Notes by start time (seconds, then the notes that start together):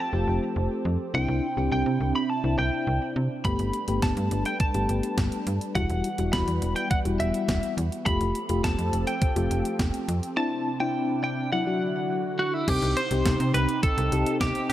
Already playing: F3 C4 G4 A4
0.00 A5
0.13 F1 A3 F4 G4
0.27 F1
0.56 F1
0.85 F2
1.14 C2 C3 C4 D4 E4 G5
1.28 C2
1.57 C2 C4 D4 G4
1.72 C2 G5
1.86 C3
2.00 C2
2.16 B5
2.30 A5
2.44 C2 C4 D4 E4
2.58 C2 G5
2.87 C2
3.16 C3
3.45 G1 G3 A3 B3 G4 A4 B4 B5, kick, closed hi-hat
3.59 G1, closed hi-hat
3.73 closed hi-hat
3.88 G1 A3 B3 G4, closed hi-hat
4.02 G1 A5, kick, snare, closed hi-hat
4.17 G2, closed hi-hat
4.31 G1, closed hi-hat
4.45 G5, closed hi-hat
4.60 A5, kick, closed hi-hat
4.74 G1 A3 B3 G4, closed hi-hat
4.89 G1, closed hi-hat
5.03 closed hi-hat
5.18 G1, kick, snare, closed hi-hat
5.32 closed hi-hat
5.47 G2, closed hi-hat
5.61 closed hi-hat
5.75 E1 E3 G3 B3 E4 F#4 F#5, kick, closed hi-hat
5.90 E1, closed hi-hat
6.04 closed hi-hat
6.18 E1 G3 E4 F#4, closed hi-hat
6.33 E1 B5, kick, snare, closed hi-hat
6.48 E2, closed hi-hat
6.62 E1, closed hi-hat
6.76 G5, closed hi-hat
6.91 F#5, kick, closed hi-hat
7.05 E1 G3 E4 F#4, closed hi-hat
7.20 E1 E5, closed hi-hat
7.34 closed hi-hat
7.49 E1, kick, snare, closed hi-hat
7.63 closed hi-hat
7.77 E2, closed hi-hat
7.92 closed hi-hat
8.06 F1 F3 A3 C4 F4 G4 A4 B5, kick, closed hi-hat
8.21 F1, closed hi-hat
8.35 closed hi-hat
8.49 F1 A3 F4 G4, closed hi-hat
8.64 F1 A5, kick, snare, closed hi-hat
8.78 F2, closed hi-hat
8.93 F1, closed hi-hat
9.07 G5, closed hi-hat
9.22 kick, closed hi-hat
9.36 F1 A3 F4 G4, closed hi-hat
9.51 F1, closed hi-hat
9.65 closed hi-hat
9.79 F1, kick, snare, closed hi-hat
9.94 closed hi-hat
10.08 F2, closed hi-hat
10.23 closed hi-hat
10.37 C3 C4 D4 E4 A5
10.80 C4 D4 E4 G5
11.24 G5
11.52 D3 F#3 D4 E4 F#4 F#5
11.67 F#3 D4 F#4
12.39 F#4
12.54 E4
12.68 C2 C3 C4 D#4 G4, kick, closed hi-hat, crash
12.82 C2, closed hi-hat
12.97 C5, closed hi-hat
13.11 C2 C4 D#4 G4, closed hi-hat
13.26 C2, kick, snare, closed hi-hat
13.40 C3, closed hi-hat
13.54 C2 B4, closed hi-hat
13.69 closed hi-hat
13.83 A4, kick, closed hi-hat
13.98 C2, closed hi-hat
14.12 C2 C4 D#4 G4, closed hi-hat
14.26 closed hi-hat
14.41 C2 G4, kick, snare, closed hi-hat
14.55 closed hi-hat
14.70 G4